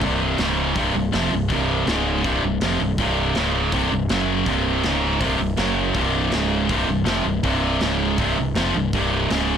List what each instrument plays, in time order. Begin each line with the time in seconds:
0.02 picked electric bass C1, distorted electric guitar C2 G2 C3, kick, open hi-hat
0.38 picked electric bass C#1, distorted electric guitar C#2 G#2 C#3, snare, open hi-hat
0.76 picked electric bass C1, distorted electric guitar C2 G2 C3, kick, open hi-hat
0.94 picked electric bass C1, distorted electric guitar C2 G2
1.12 picked electric bass F1, distorted electric guitar F2 C3 F3, snare, open hi-hat
1.31 picked electric bass C1, distorted electric guitar C2 G2
1.48 picked electric bass C1, distorted electric guitar C2 G2 C3, kick, open hi-hat
1.86 picked electric bass C#1, distorted electric guitar C#2 G#2 C#3, snare, open hi-hat
2.23 picked electric bass C1, distorted electric guitar C2 G2 C3, kick, open hi-hat
2.43 picked electric bass C1, distorted electric guitar C2 G2
2.61 picked electric bass F1, distorted electric guitar F2 C3 F3, snare, open hi-hat
2.80 picked electric bass C1, distorted electric guitar C2 G2
2.98 picked electric bass C1, distorted electric guitar C2 G2 C3, kick, open hi-hat
3.35 picked electric bass C#1, distorted electric guitar C#2 G#2 C#3, snare, open hi-hat
3.72 picked electric bass C1, distorted electric guitar C2 G2 C3, kick, open hi-hat
3.91 picked electric bass C1, distorted electric guitar C2 G2
4.09 picked electric bass F#1, distorted electric guitar F#2 C#3 F#3, snare, open hi-hat
4.46 picked electric bass C1, distorted electric guitar C2 G2 C3, kick, open hi-hat
4.83 picked electric bass C#1, distorted electric guitar C#2 G#2 C#3, snare, open hi-hat
5.20 picked electric bass C1, distorted electric guitar C2 G2 C3, kick, open hi-hat
5.39 picked electric bass C1, distorted electric guitar C2 G2
5.57 picked electric bass F#1, distorted electric guitar F#2 C#3 F#3, snare, open hi-hat
5.94 picked electric bass C1, distorted electric guitar C2 G2 C3, kick, open hi-hat
6.31 picked electric bass C#1, distorted electric guitar C#2 G#2 C#3, snare, open hi-hat
6.68 picked electric bass C1, distorted electric guitar C2 G2 C3, kick, open hi-hat
6.88 picked electric bass C1, distorted electric guitar C2 G2
7.05 picked electric bass F1, distorted electric guitar F2 C3 F3, snare, open hi-hat
7.25 picked electric bass C1, distorted electric guitar C2 G2
7.43 picked electric bass C1, distorted electric guitar C2 G2 C3, kick, open hi-hat
7.81 picked electric bass C#1, distorted electric guitar C#2 G#2 C#3, snare, open hi-hat
8.18 picked electric bass C1, distorted electric guitar C2 G2 C3, kick, open hi-hat
8.37 picked electric bass C1, distorted electric guitar C2 G2
8.55 picked electric bass F1, distorted electric guitar F2 C3 F3, snare, open hi-hat
8.75 picked electric bass C1, distorted electric guitar C2 G2
8.93 picked electric bass C1, distorted electric guitar C2 G2 C3, kick, open hi-hat
9.30 picked electric bass C#1, distorted electric guitar C#2 G#2 C#3, snare, open hi-hat